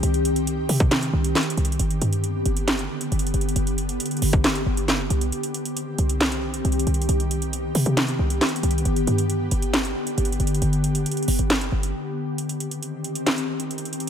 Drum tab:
HH |x-----x-----x-----x-----x-----------o-----x-----x-----x-----------x-----x---x---x---x---x---x---|x-----x-----x-----x-----x-----------x-----x-----x-----x-----------x-----x---x---x---x---x---x---|x-----x-----x-----x-----x--x--x--x--o-----x-----x-----x-----------x-----x-----------x-----x-----|x-----x-----x-----x-----x-----------x-----x-----x-----x-----------x-----x---x---x---x---x---x---|
CP |------------------------------------------------x-----------------------x-----------------------|------------------------------------------------x-----------------------------------------------|------------------------------------------------x-----------------------x-----------------------|------------------------------------------------x-----------------------------------------------|
SD |------------------------------------------------o-----------------------o-----------------------|------------------------------------------------o-----------------------------------------------|------------------------------------------------o-----------------------o-----------------------|------------------------------------------------o-----------------------------------------------|
BD |------------------------------------------o-----------------------------------------------------|------------------------------------------------------------------------------------------------|------------------------------------------o-----------------------------------------------------|------------------------------------------------------------------------------------------------|

HH |x-----x-----x-----x-----x-----------o-----x-----x-----x-----------x-----x---x---x---x---x---x---|x-----x-----x-----x-----x-----------x-----x-----x-----x-----------x-----x---x---x---x---x---x---|x-----x-----x-----x-----x--x--x--x--o-----x-----x-----x-----------x-----------------------------|x-----x-----x-----x-----x-----------x-----x-----x-----x-----------x-----x---x---x---x---x-------|
CP |------------------------------------------------x-----------------------x-----------------------|------------------------------------------------x-----------------------------------------------|------------------------------------------------x-----------------------------------------------|------------------------------------------------x-----------------------------------------------|
SD |------------------------------------------------o-----------------------o-----------------------|------------------------------------------------o-----------------------------------------------|------------------------------------------------o-----------------------------------------------|------------------------------------------------o-----------------------------------------------|
BD |------------------------------------------------------------------------------------------------|------------------------------------------------------------------------------------------------|------------------------------------------------------------------------------------------------|------------------------------------------------------------------------------------------------|